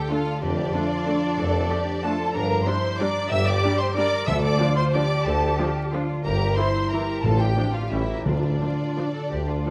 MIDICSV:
0, 0, Header, 1, 10, 480
1, 0, Start_track
1, 0, Key_signature, -1, "minor"
1, 0, Tempo, 321371
1, 623, Time_signature, 3, 2, 24, 8
1, 5420, Tempo, 327869
1, 11180, Tempo, 349854
1, 14117, End_track
2, 0, Start_track
2, 0, Title_t, "Violin section"
2, 0, Program_c, 0, 48
2, 146, Note_on_c, 0, 77, 106
2, 623, Note_off_c, 0, 77, 0
2, 624, Note_on_c, 0, 74, 127
2, 2994, Note_off_c, 0, 74, 0
2, 3038, Note_on_c, 0, 81, 120
2, 3496, Note_on_c, 0, 82, 118
2, 3506, Note_off_c, 0, 81, 0
2, 3967, Note_off_c, 0, 82, 0
2, 3979, Note_on_c, 0, 84, 121
2, 4460, Note_on_c, 0, 86, 126
2, 4469, Note_off_c, 0, 84, 0
2, 4937, Note_off_c, 0, 86, 0
2, 4943, Note_on_c, 0, 88, 127
2, 5170, Note_off_c, 0, 88, 0
2, 5171, Note_on_c, 0, 86, 127
2, 5655, Note_on_c, 0, 84, 123
2, 5665, Note_off_c, 0, 86, 0
2, 5905, Note_off_c, 0, 84, 0
2, 5908, Note_on_c, 0, 86, 127
2, 6365, Note_off_c, 0, 86, 0
2, 6366, Note_on_c, 0, 88, 127
2, 6588, Note_on_c, 0, 86, 127
2, 6601, Note_off_c, 0, 88, 0
2, 7081, Note_off_c, 0, 86, 0
2, 7091, Note_on_c, 0, 84, 127
2, 7192, Note_off_c, 0, 84, 0
2, 7334, Note_on_c, 0, 86, 123
2, 7800, Note_off_c, 0, 86, 0
2, 7802, Note_on_c, 0, 81, 123
2, 8536, Note_off_c, 0, 81, 0
2, 9239, Note_on_c, 0, 82, 118
2, 9692, Note_off_c, 0, 82, 0
2, 9720, Note_on_c, 0, 84, 118
2, 10228, Note_off_c, 0, 84, 0
2, 10237, Note_on_c, 0, 82, 105
2, 10704, Note_on_c, 0, 81, 111
2, 10706, Note_off_c, 0, 82, 0
2, 10929, Note_on_c, 0, 79, 104
2, 10934, Note_off_c, 0, 81, 0
2, 11415, Note_off_c, 0, 79, 0
2, 11417, Note_on_c, 0, 77, 92
2, 11661, Note_off_c, 0, 77, 0
2, 11663, Note_on_c, 0, 76, 95
2, 12136, Note_off_c, 0, 76, 0
2, 12143, Note_on_c, 0, 74, 105
2, 14117, Note_off_c, 0, 74, 0
2, 14117, End_track
3, 0, Start_track
3, 0, Title_t, "Violin section"
3, 0, Program_c, 1, 48
3, 137, Note_on_c, 1, 65, 100
3, 614, Note_on_c, 1, 62, 110
3, 619, Note_off_c, 1, 65, 0
3, 3037, Note_off_c, 1, 62, 0
3, 3039, Note_on_c, 1, 69, 103
3, 3497, Note_off_c, 1, 69, 0
3, 3506, Note_on_c, 1, 70, 114
3, 3976, Note_on_c, 1, 72, 107
3, 3982, Note_off_c, 1, 70, 0
3, 4458, Note_off_c, 1, 72, 0
3, 4466, Note_on_c, 1, 74, 120
3, 4927, Note_on_c, 1, 76, 119
3, 4940, Note_off_c, 1, 74, 0
3, 5160, Note_on_c, 1, 74, 114
3, 5166, Note_off_c, 1, 76, 0
3, 5656, Note_on_c, 1, 72, 102
3, 5660, Note_off_c, 1, 74, 0
3, 5901, Note_on_c, 1, 74, 124
3, 5905, Note_off_c, 1, 72, 0
3, 6361, Note_off_c, 1, 74, 0
3, 6362, Note_on_c, 1, 76, 118
3, 6457, Note_off_c, 1, 76, 0
3, 6591, Note_on_c, 1, 74, 117
3, 7083, Note_off_c, 1, 74, 0
3, 7098, Note_on_c, 1, 72, 104
3, 7333, Note_on_c, 1, 74, 117
3, 7345, Note_off_c, 1, 72, 0
3, 7804, Note_on_c, 1, 69, 101
3, 7809, Note_off_c, 1, 74, 0
3, 8537, Note_off_c, 1, 69, 0
3, 9253, Note_on_c, 1, 70, 103
3, 9700, Note_off_c, 1, 70, 0
3, 9722, Note_on_c, 1, 72, 105
3, 10229, Note_off_c, 1, 72, 0
3, 10240, Note_on_c, 1, 70, 97
3, 10698, Note_off_c, 1, 70, 0
3, 10712, Note_on_c, 1, 69, 103
3, 10931, Note_on_c, 1, 67, 92
3, 10938, Note_off_c, 1, 69, 0
3, 11414, Note_on_c, 1, 65, 79
3, 11416, Note_off_c, 1, 67, 0
3, 11654, Note_on_c, 1, 64, 86
3, 11659, Note_off_c, 1, 65, 0
3, 12122, Note_on_c, 1, 62, 88
3, 12131, Note_off_c, 1, 64, 0
3, 14117, Note_off_c, 1, 62, 0
3, 14117, End_track
4, 0, Start_track
4, 0, Title_t, "Cello section"
4, 0, Program_c, 2, 48
4, 0, Note_on_c, 2, 69, 89
4, 618, Note_on_c, 2, 67, 91
4, 621, Note_off_c, 2, 69, 0
4, 1089, Note_off_c, 2, 67, 0
4, 1093, Note_on_c, 2, 65, 94
4, 2062, Note_off_c, 2, 65, 0
4, 2063, Note_on_c, 2, 69, 100
4, 2537, Note_on_c, 2, 67, 93
4, 2541, Note_off_c, 2, 69, 0
4, 3037, Note_on_c, 2, 65, 94
4, 3038, Note_off_c, 2, 67, 0
4, 3505, Note_off_c, 2, 65, 0
4, 3505, Note_on_c, 2, 62, 90
4, 3971, Note_off_c, 2, 62, 0
4, 3983, Note_on_c, 2, 64, 86
4, 4471, Note_off_c, 2, 64, 0
4, 4471, Note_on_c, 2, 62, 97
4, 4941, Note_on_c, 2, 67, 113
4, 4942, Note_off_c, 2, 62, 0
4, 5901, Note_on_c, 2, 70, 112
4, 5910, Note_off_c, 2, 67, 0
4, 6361, Note_off_c, 2, 70, 0
4, 6364, Note_on_c, 2, 69, 99
4, 6836, Note_off_c, 2, 69, 0
4, 6841, Note_on_c, 2, 65, 102
4, 7329, Note_on_c, 2, 67, 101
4, 7341, Note_off_c, 2, 65, 0
4, 8781, Note_off_c, 2, 67, 0
4, 8785, Note_on_c, 2, 65, 90
4, 9250, Note_on_c, 2, 67, 100
4, 9252, Note_off_c, 2, 65, 0
4, 9722, Note_off_c, 2, 67, 0
4, 9730, Note_on_c, 2, 64, 87
4, 10233, Note_off_c, 2, 64, 0
4, 10237, Note_on_c, 2, 67, 85
4, 10696, Note_off_c, 2, 67, 0
4, 10706, Note_on_c, 2, 65, 78
4, 11169, Note_off_c, 2, 65, 0
4, 11180, Note_on_c, 2, 67, 80
4, 12116, Note_off_c, 2, 67, 0
4, 12136, Note_on_c, 2, 65, 74
4, 12564, Note_off_c, 2, 65, 0
4, 12611, Note_on_c, 2, 65, 77
4, 13294, Note_off_c, 2, 65, 0
4, 13349, Note_on_c, 2, 69, 87
4, 13578, Note_off_c, 2, 69, 0
4, 13578, Note_on_c, 2, 67, 80
4, 13805, Note_off_c, 2, 67, 0
4, 13812, Note_on_c, 2, 65, 79
4, 14053, Note_on_c, 2, 69, 75
4, 14056, Note_off_c, 2, 65, 0
4, 14117, Note_off_c, 2, 69, 0
4, 14117, End_track
5, 0, Start_track
5, 0, Title_t, "Harp"
5, 0, Program_c, 3, 46
5, 0, Note_on_c, 3, 50, 72
5, 0, Note_on_c, 3, 57, 65
5, 0, Note_on_c, 3, 74, 58
5, 148, Note_on_c, 3, 69, 68
5, 370, Note_off_c, 3, 74, 0
5, 388, Note_on_c, 3, 74, 71
5, 625, Note_on_c, 3, 41, 84
5, 643, Note_off_c, 3, 50, 0
5, 834, Note_off_c, 3, 57, 0
5, 852, Note_on_c, 3, 57, 64
5, 1082, Note_off_c, 3, 69, 0
5, 1100, Note_on_c, 3, 69, 75
5, 1332, Note_off_c, 3, 74, 0
5, 1350, Note_on_c, 3, 74, 67
5, 1572, Note_off_c, 3, 69, 0
5, 1590, Note_on_c, 3, 69, 69
5, 1819, Note_off_c, 3, 74, 0
5, 1837, Note_on_c, 3, 74, 76
5, 2048, Note_off_c, 3, 41, 0
5, 2066, Note_on_c, 3, 41, 83
5, 2279, Note_off_c, 3, 57, 0
5, 2297, Note_on_c, 3, 57, 70
5, 2529, Note_off_c, 3, 69, 0
5, 2547, Note_on_c, 3, 69, 70
5, 2779, Note_off_c, 3, 74, 0
5, 2797, Note_on_c, 3, 74, 72
5, 3023, Note_off_c, 3, 69, 0
5, 3041, Note_on_c, 3, 69, 73
5, 3260, Note_off_c, 3, 74, 0
5, 3278, Note_on_c, 3, 74, 79
5, 3509, Note_on_c, 3, 43, 86
5, 3525, Note_off_c, 3, 41, 0
5, 3525, Note_off_c, 3, 57, 0
5, 3525, Note_off_c, 3, 69, 0
5, 3746, Note_on_c, 3, 58, 76
5, 3990, Note_on_c, 3, 67, 78
5, 4214, Note_off_c, 3, 74, 0
5, 4232, Note_on_c, 3, 74, 73
5, 4481, Note_on_c, 3, 70, 77
5, 4696, Note_off_c, 3, 74, 0
5, 4714, Note_on_c, 3, 74, 76
5, 4923, Note_off_c, 3, 43, 0
5, 4941, Note_on_c, 3, 43, 90
5, 5156, Note_off_c, 3, 58, 0
5, 5174, Note_on_c, 3, 58, 69
5, 5403, Note_off_c, 3, 67, 0
5, 5421, Note_on_c, 3, 67, 81
5, 5650, Note_off_c, 3, 74, 0
5, 5668, Note_on_c, 3, 74, 66
5, 5891, Note_off_c, 3, 70, 0
5, 5909, Note_on_c, 3, 70, 80
5, 6128, Note_off_c, 3, 74, 0
5, 6145, Note_on_c, 3, 74, 78
5, 6372, Note_on_c, 3, 50, 85
5, 6393, Note_off_c, 3, 43, 0
5, 6393, Note_off_c, 3, 58, 0
5, 6393, Note_off_c, 3, 70, 0
5, 6394, Note_off_c, 3, 67, 0
5, 6605, Note_on_c, 3, 57, 75
5, 6846, Note_on_c, 3, 65, 78
5, 7074, Note_off_c, 3, 74, 0
5, 7092, Note_on_c, 3, 74, 72
5, 7338, Note_on_c, 3, 69, 79
5, 7563, Note_off_c, 3, 74, 0
5, 7581, Note_on_c, 3, 74, 80
5, 7784, Note_off_c, 3, 50, 0
5, 7802, Note_on_c, 3, 50, 86
5, 8017, Note_off_c, 3, 57, 0
5, 8034, Note_on_c, 3, 57, 73
5, 8268, Note_off_c, 3, 65, 0
5, 8285, Note_on_c, 3, 65, 77
5, 8521, Note_off_c, 3, 74, 0
5, 8539, Note_on_c, 3, 74, 70
5, 8773, Note_off_c, 3, 69, 0
5, 8791, Note_on_c, 3, 69, 78
5, 9009, Note_off_c, 3, 74, 0
5, 9027, Note_on_c, 3, 74, 77
5, 9258, Note_on_c, 3, 43, 82
5, 9265, Note_off_c, 3, 50, 0
5, 9266, Note_off_c, 3, 57, 0
5, 9269, Note_off_c, 3, 65, 0
5, 9272, Note_off_c, 3, 74, 0
5, 9273, Note_off_c, 3, 69, 0
5, 9491, Note_on_c, 3, 58, 72
5, 9736, Note_on_c, 3, 64, 74
5, 9991, Note_on_c, 3, 76, 65
5, 10246, Note_on_c, 3, 70, 70
5, 10463, Note_off_c, 3, 76, 0
5, 10481, Note_on_c, 3, 76, 70
5, 10712, Note_on_c, 3, 45, 73
5, 10724, Note_off_c, 3, 64, 0
5, 10725, Note_off_c, 3, 43, 0
5, 10725, Note_off_c, 3, 58, 0
5, 10725, Note_off_c, 3, 76, 0
5, 10728, Note_off_c, 3, 70, 0
5, 10945, Note_on_c, 3, 62, 60
5, 11185, Note_on_c, 3, 65, 60
5, 11421, Note_on_c, 3, 74, 59
5, 11646, Note_off_c, 3, 45, 0
5, 11662, Note_on_c, 3, 45, 77
5, 11682, Note_off_c, 3, 74, 0
5, 11684, Note_off_c, 3, 65, 0
5, 11685, Note_off_c, 3, 62, 0
5, 11904, Note_on_c, 3, 67, 60
5, 11915, Note_on_c, 3, 70, 61
5, 12136, Note_on_c, 3, 50, 69
5, 12154, Note_off_c, 3, 45, 0
5, 12156, Note_off_c, 3, 67, 0
5, 12157, Note_off_c, 3, 70, 0
5, 12372, Note_on_c, 3, 62, 59
5, 12618, Note_on_c, 3, 65, 60
5, 12861, Note_on_c, 3, 69, 54
5, 13106, Note_on_c, 3, 74, 59
5, 13330, Note_off_c, 3, 69, 0
5, 13346, Note_on_c, 3, 69, 57
5, 13564, Note_off_c, 3, 50, 0
5, 13581, Note_on_c, 3, 50, 60
5, 13796, Note_off_c, 3, 62, 0
5, 13813, Note_on_c, 3, 62, 55
5, 14046, Note_off_c, 3, 65, 0
5, 14062, Note_on_c, 3, 65, 58
5, 14117, Note_off_c, 3, 50, 0
5, 14117, Note_off_c, 3, 62, 0
5, 14117, Note_off_c, 3, 65, 0
5, 14117, Note_off_c, 3, 69, 0
5, 14117, Note_off_c, 3, 74, 0
5, 14117, End_track
6, 0, Start_track
6, 0, Title_t, "French horn section"
6, 0, Program_c, 4, 60
6, 146, Note_on_c, 4, 57, 73
6, 148, Note_on_c, 4, 62, 73
6, 319, Note_off_c, 4, 57, 0
6, 321, Note_off_c, 4, 62, 0
6, 1105, Note_on_c, 4, 57, 77
6, 1109, Note_on_c, 4, 62, 73
6, 1283, Note_off_c, 4, 57, 0
6, 1286, Note_off_c, 4, 62, 0
6, 1577, Note_on_c, 4, 57, 71
6, 1579, Note_on_c, 4, 62, 73
6, 1752, Note_off_c, 4, 57, 0
6, 1754, Note_off_c, 4, 62, 0
6, 2545, Note_on_c, 4, 57, 74
6, 2551, Note_on_c, 4, 62, 86
6, 2725, Note_off_c, 4, 57, 0
6, 2729, Note_off_c, 4, 62, 0
6, 3052, Note_on_c, 4, 57, 76
6, 3053, Note_on_c, 4, 62, 76
6, 3219, Note_off_c, 4, 57, 0
6, 3220, Note_off_c, 4, 62, 0
6, 3986, Note_on_c, 4, 62, 83
6, 3991, Note_on_c, 4, 55, 82
6, 4161, Note_off_c, 4, 62, 0
6, 4165, Note_off_c, 4, 55, 0
6, 4479, Note_on_c, 4, 55, 70
6, 4482, Note_on_c, 4, 62, 75
6, 4648, Note_off_c, 4, 55, 0
6, 4650, Note_off_c, 4, 62, 0
6, 5423, Note_on_c, 4, 62, 82
6, 5425, Note_on_c, 4, 55, 87
6, 5600, Note_off_c, 4, 62, 0
6, 5601, Note_off_c, 4, 55, 0
6, 5893, Note_on_c, 4, 62, 74
6, 5895, Note_on_c, 4, 55, 75
6, 6066, Note_off_c, 4, 62, 0
6, 6068, Note_off_c, 4, 55, 0
6, 6838, Note_on_c, 4, 53, 83
6, 6838, Note_on_c, 4, 62, 79
6, 7020, Note_off_c, 4, 53, 0
6, 7020, Note_off_c, 4, 62, 0
6, 7330, Note_on_c, 4, 53, 74
6, 7335, Note_on_c, 4, 62, 74
6, 7504, Note_off_c, 4, 53, 0
6, 7508, Note_off_c, 4, 62, 0
6, 8288, Note_on_c, 4, 62, 76
6, 8290, Note_on_c, 4, 53, 81
6, 8469, Note_off_c, 4, 62, 0
6, 8471, Note_off_c, 4, 53, 0
6, 8787, Note_on_c, 4, 62, 68
6, 8792, Note_on_c, 4, 53, 73
6, 8956, Note_off_c, 4, 62, 0
6, 8960, Note_off_c, 4, 53, 0
6, 9724, Note_on_c, 4, 52, 83
6, 9730, Note_on_c, 4, 64, 83
6, 9907, Note_off_c, 4, 52, 0
6, 9912, Note_off_c, 4, 64, 0
6, 10231, Note_on_c, 4, 52, 69
6, 10236, Note_on_c, 4, 64, 69
6, 10402, Note_off_c, 4, 52, 0
6, 10406, Note_off_c, 4, 64, 0
6, 11170, Note_on_c, 4, 53, 69
6, 11170, Note_on_c, 4, 62, 69
6, 11345, Note_off_c, 4, 53, 0
6, 11346, Note_off_c, 4, 62, 0
6, 11659, Note_on_c, 4, 61, 59
6, 11664, Note_on_c, 4, 55, 66
6, 11831, Note_off_c, 4, 61, 0
6, 11835, Note_off_c, 4, 55, 0
6, 12606, Note_on_c, 4, 62, 64
6, 12610, Note_on_c, 4, 53, 65
6, 12787, Note_off_c, 4, 62, 0
6, 12789, Note_off_c, 4, 53, 0
6, 13095, Note_on_c, 4, 53, 55
6, 13099, Note_on_c, 4, 62, 62
6, 13268, Note_off_c, 4, 53, 0
6, 13271, Note_off_c, 4, 62, 0
6, 14061, Note_on_c, 4, 62, 59
6, 14062, Note_on_c, 4, 53, 66
6, 14117, Note_off_c, 4, 53, 0
6, 14117, Note_off_c, 4, 62, 0
6, 14117, End_track
7, 0, Start_track
7, 0, Title_t, "Viola section"
7, 0, Program_c, 5, 48
7, 148, Note_on_c, 5, 57, 70
7, 153, Note_on_c, 5, 62, 68
7, 267, Note_off_c, 5, 57, 0
7, 272, Note_off_c, 5, 62, 0
7, 1098, Note_on_c, 5, 62, 80
7, 1102, Note_on_c, 5, 57, 71
7, 1217, Note_off_c, 5, 62, 0
7, 1221, Note_off_c, 5, 57, 0
7, 1594, Note_on_c, 5, 57, 77
7, 1594, Note_on_c, 5, 62, 70
7, 1713, Note_off_c, 5, 62, 0
7, 1714, Note_off_c, 5, 57, 0
7, 2540, Note_on_c, 5, 62, 83
7, 2542, Note_on_c, 5, 57, 76
7, 2659, Note_off_c, 5, 62, 0
7, 2661, Note_off_c, 5, 57, 0
7, 3032, Note_on_c, 5, 62, 81
7, 3033, Note_on_c, 5, 57, 80
7, 3152, Note_off_c, 5, 57, 0
7, 3152, Note_off_c, 5, 62, 0
7, 3979, Note_on_c, 5, 62, 87
7, 3980, Note_on_c, 5, 55, 84
7, 4099, Note_off_c, 5, 55, 0
7, 4099, Note_off_c, 5, 62, 0
7, 4479, Note_on_c, 5, 62, 81
7, 4482, Note_on_c, 5, 55, 85
7, 4598, Note_off_c, 5, 62, 0
7, 4601, Note_off_c, 5, 55, 0
7, 5431, Note_on_c, 5, 62, 86
7, 5433, Note_on_c, 5, 55, 85
7, 5548, Note_off_c, 5, 62, 0
7, 5551, Note_off_c, 5, 55, 0
7, 5912, Note_on_c, 5, 62, 87
7, 5916, Note_on_c, 5, 55, 84
7, 6029, Note_off_c, 5, 62, 0
7, 6033, Note_off_c, 5, 55, 0
7, 6851, Note_on_c, 5, 53, 86
7, 6851, Note_on_c, 5, 62, 90
7, 6968, Note_off_c, 5, 53, 0
7, 6968, Note_off_c, 5, 62, 0
7, 7344, Note_on_c, 5, 53, 77
7, 7347, Note_on_c, 5, 62, 82
7, 7461, Note_off_c, 5, 53, 0
7, 7464, Note_off_c, 5, 62, 0
7, 8298, Note_on_c, 5, 53, 87
7, 8302, Note_on_c, 5, 62, 85
7, 8415, Note_off_c, 5, 53, 0
7, 8420, Note_off_c, 5, 62, 0
7, 8796, Note_on_c, 5, 53, 79
7, 8796, Note_on_c, 5, 62, 79
7, 8913, Note_off_c, 5, 53, 0
7, 8913, Note_off_c, 5, 62, 0
7, 9738, Note_on_c, 5, 52, 82
7, 9738, Note_on_c, 5, 64, 76
7, 9855, Note_off_c, 5, 52, 0
7, 9855, Note_off_c, 5, 64, 0
7, 10245, Note_on_c, 5, 52, 72
7, 10245, Note_on_c, 5, 64, 70
7, 10362, Note_off_c, 5, 52, 0
7, 10362, Note_off_c, 5, 64, 0
7, 11180, Note_on_c, 5, 53, 69
7, 11184, Note_on_c, 5, 62, 70
7, 11290, Note_off_c, 5, 53, 0
7, 11294, Note_off_c, 5, 62, 0
7, 11663, Note_on_c, 5, 61, 65
7, 11667, Note_on_c, 5, 55, 69
7, 11772, Note_off_c, 5, 61, 0
7, 11776, Note_off_c, 5, 55, 0
7, 12615, Note_on_c, 5, 53, 63
7, 12623, Note_on_c, 5, 62, 62
7, 12725, Note_off_c, 5, 53, 0
7, 12732, Note_off_c, 5, 62, 0
7, 13110, Note_on_c, 5, 62, 60
7, 13112, Note_on_c, 5, 53, 68
7, 13220, Note_off_c, 5, 62, 0
7, 13222, Note_off_c, 5, 53, 0
7, 14053, Note_on_c, 5, 62, 60
7, 14058, Note_on_c, 5, 53, 65
7, 14117, Note_off_c, 5, 53, 0
7, 14117, Note_off_c, 5, 62, 0
7, 14117, End_track
8, 0, Start_track
8, 0, Title_t, "Timpani"
8, 0, Program_c, 6, 47
8, 6371, Note_on_c, 6, 50, 101
8, 7047, Note_off_c, 6, 50, 0
8, 10703, Note_on_c, 6, 45, 93
8, 11368, Note_off_c, 6, 45, 0
8, 12132, Note_on_c, 6, 50, 93
8, 12811, Note_off_c, 6, 50, 0
8, 14117, End_track
9, 0, Start_track
9, 0, Title_t, "Double bass section"
9, 0, Program_c, 7, 48
9, 620, Note_on_c, 7, 41, 89
9, 1017, Note_off_c, 7, 41, 0
9, 2059, Note_on_c, 7, 41, 94
9, 2456, Note_off_c, 7, 41, 0
9, 3510, Note_on_c, 7, 43, 95
9, 3901, Note_off_c, 7, 43, 0
9, 4941, Note_on_c, 7, 43, 105
9, 5335, Note_off_c, 7, 43, 0
9, 6370, Note_on_c, 7, 38, 105
9, 6765, Note_off_c, 7, 38, 0
9, 7813, Note_on_c, 7, 38, 93
9, 8206, Note_off_c, 7, 38, 0
9, 9257, Note_on_c, 7, 31, 90
9, 9651, Note_off_c, 7, 31, 0
9, 10711, Note_on_c, 7, 33, 83
9, 11098, Note_off_c, 7, 33, 0
9, 11662, Note_on_c, 7, 33, 90
9, 12058, Note_off_c, 7, 33, 0
9, 12133, Note_on_c, 7, 38, 81
9, 12530, Note_off_c, 7, 38, 0
9, 13583, Note_on_c, 7, 38, 74
9, 13974, Note_off_c, 7, 38, 0
9, 14117, End_track
10, 0, Start_track
10, 0, Title_t, "Tuba"
10, 0, Program_c, 8, 58
10, 620, Note_on_c, 8, 29, 80
10, 1017, Note_off_c, 8, 29, 0
10, 2062, Note_on_c, 8, 29, 94
10, 2458, Note_off_c, 8, 29, 0
10, 3513, Note_on_c, 8, 31, 92
10, 3902, Note_off_c, 8, 31, 0
10, 4944, Note_on_c, 8, 31, 98
10, 5337, Note_off_c, 8, 31, 0
10, 6370, Note_on_c, 8, 38, 95
10, 6765, Note_off_c, 8, 38, 0
10, 7818, Note_on_c, 8, 38, 98
10, 8208, Note_off_c, 8, 38, 0
10, 9251, Note_on_c, 8, 31, 87
10, 9648, Note_off_c, 8, 31, 0
10, 10712, Note_on_c, 8, 33, 82
10, 11099, Note_off_c, 8, 33, 0
10, 11665, Note_on_c, 8, 33, 73
10, 12059, Note_off_c, 8, 33, 0
10, 12140, Note_on_c, 8, 38, 73
10, 12533, Note_off_c, 8, 38, 0
10, 13578, Note_on_c, 8, 38, 75
10, 13972, Note_off_c, 8, 38, 0
10, 14117, End_track
0, 0, End_of_file